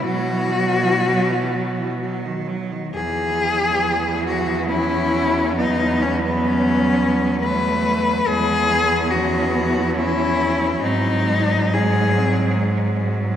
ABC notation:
X:1
M:3/4
L:1/16
Q:1/4=68
K:E
V:1 name="Cello"
F8 z4 | G6 F2 E4 | D2 C B, C4 B4 | G4 F4 E4 |
D4 G4 z4 |]
V:2 name="Cello"
F,8- F,2 z2 | z4 E,4 C4 | B,8 A,4 | G,2 B,2 C2 B,2 C4 |
=C2 G,2 G,2 C2 G,2 F,2 |]
V:3 name="Cello" clef=bass
F, E, F, E, F, E, F, E, F, D, F, D, | E,12 | F,12 | E,12 |
F,12 |]
V:4 name="Cello" clef=bass
B,,12 | E,,12- | E,,12 | E,,12 |
G,,12 |]